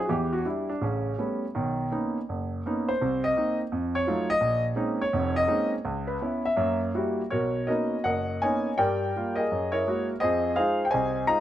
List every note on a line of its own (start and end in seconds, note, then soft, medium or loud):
0.05 0.41 E2 medium
0.05 0.41 E3 medium
0.05 0.09 F#4 soft
0.10 0.33 G4 medium
0.33 0.45 F#4 medium
0.45 0.71 G3 soft
0.45 0.68 D4 soft
0.45 0.71 E4 medium
0.69 0.82 D4 medium
0.81 1.13 A1 medium
0.81 1.13 C#3 medium
0.81 1.18 C#4 medium
1.18 1.44 G3 soft
1.18 1.44 A3 soft
1.18 1.44 B3 soft
1.18 1.44 C#4 medium
1.55 1.87 B1 medium
1.55 1.87 D#3 medium
1.92 2.17 A#3 soft
1.92 2.17 B3 soft
1.92 2.17 C#4 soft
1.92 2.17 D#4 medium
2.29 2.60 F#1 medium
2.66 2.90 A#3 medium
2.66 2.90 B3 soft
2.66 2.91 C#4 soft
2.66 2.91 D#4 medium
2.88 3.22 C5 medium
3.02 3.32 C2 medium
3.02 3.32 C3 medium
3.24 3.57 D#5 medium
3.37 3.61 A#3 medium
3.37 3.61 C4 medium
3.37 3.61 D#4 medium
3.72 4.02 F2 medium
3.95 4.28 C#5 medium
4.07 4.32 F#3 medium
4.07 4.32 A3 soft
4.07 4.32 D#4 medium
4.07 4.32 F4 medium
4.30 4.63 D#5 loud
4.41 4.72 A#1 medium
4.76 5.01 G#3 medium
4.76 5.02 A#3 medium
4.76 5.02 C4 soft
4.76 5.02 C#4 soft
4.76 5.02 D#4 medium
5.01 5.34 C#5 medium
5.13 5.44 F1 medium
5.13 5.44 F2 medium
5.36 5.69 D#5 loud
5.48 5.73 G#3 medium
5.48 5.73 A#3 medium
5.48 5.73 C4 medium
5.48 5.73 C#4 medium
5.48 5.73 D#4 medium
5.85 6.16 C#2 medium
6.07 6.42 B4 medium
6.22 6.46 B3 medium
6.22 6.46 C#4 soft
6.22 6.47 E4 medium
6.45 6.80 E5 medium
6.57 6.89 F#2 medium
6.57 6.89 A#3 medium
6.95 7.20 G3 medium
6.95 7.20 A#3 medium
6.95 7.21 E4 medium
6.95 7.21 F#4 medium
7.30 7.64 B1 medium
7.30 7.67 F#4 medium
7.30 7.66 A#4 medium
7.30 7.69 C#5 medium
7.67 7.94 A#3 soft
7.67 7.95 B3 soft
7.67 7.95 C#4 soft
7.67 7.95 D#4 soft
7.67 8.38 F#4 soft
7.67 8.04 A#4 medium
7.67 8.02 D#5 medium
8.04 8.37 F#1 medium
8.04 8.75 A#4 medium
8.04 8.41 D#5 medium
8.04 8.43 F#5 medium
8.42 8.68 A#3 soft
8.42 8.68 B3 soft
8.42 8.68 C#4 soft
8.42 8.68 D#4 medium
8.42 8.77 C#5 medium
8.42 8.76 D#5 medium
8.42 8.80 G#5 medium
8.78 9.10 G2 medium
8.78 9.10 G3 medium
8.78 9.34 A#4 medium
8.78 9.46 D5 medium
8.78 9.39 G5 medium
9.16 9.40 G3 soft
9.16 9.41 A#3 soft
9.16 9.41 F4 medium
9.36 10.04 G#4 medium
9.36 9.71 A#4 medium
9.36 9.74 D#5 medium
9.51 9.82 F#2 medium
9.72 9.86 E4 medium
9.72 10.17 A#4 medium
9.72 10.06 C#5 medium
9.87 10.11 G#3 medium
9.87 10.11 A#3 soft
9.87 10.11 E4 soft
9.87 10.11 F#4 medium
10.20 10.53 F2 medium
10.20 10.53 F3 medium
10.20 10.55 G#4 medium
10.20 10.55 C5 medium
10.20 10.57 D#5 loud
10.56 10.82 G#3 soft
10.56 10.82 D#4 soft
10.56 10.83 F4 medium
10.56 11.23 G#4 medium
10.56 10.90 C5 medium
10.56 10.85 F5 medium
10.85 10.91 G5 medium
10.91 11.24 C2 medium
10.91 11.40 C5 medium
10.91 11.26 D#5 medium
10.91 11.24 G#5 medium
11.27 11.40 G#3 medium
11.27 11.40 D#4 medium
11.27 11.40 F4 medium
11.27 11.40 D#5 medium
11.27 11.40 A#5 medium